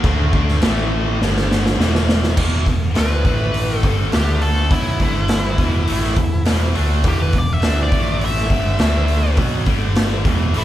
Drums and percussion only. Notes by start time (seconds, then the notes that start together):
0.04 kick, crash
0.33 kick
0.48 snare
0.62 snare, crash
1.22 snare
1.37 snare
1.51 snare
1.66 snare
1.80 snare
1.95 snare
2.09 snare
2.23 snare
2.37 kick, crash
2.66 kick, open hi-hat
2.95 snare, open hi-hat
3.25 kick, open hi-hat
3.54 open hi-hat
3.83 kick, open hi-hat
4.12 snare, open hi-hat
4.41 open hi-hat
4.71 kick, open hi-hat
5.00 kick, open hi-hat
5.28 snare, open hi-hat
5.58 kick, open hi-hat
5.87 open hi-hat
6.04 snare
6.16 kick, open hi-hat
6.45 snare, open hi-hat
6.75 open hi-hat
7.04 kick, open hi-hat
7.33 kick, open hi-hat
7.62 snare, open hi-hat
7.92 kick, open hi-hat
8.21 open hi-hat
8.37 snare
8.50 kick, open hi-hat
8.79 snare, open hi-hat
9.08 open hi-hat
9.37 kick, open hi-hat
9.66 kick, open hi-hat
9.95 snare, open hi-hat
10.25 kick, open hi-hat
10.54 open hi-hat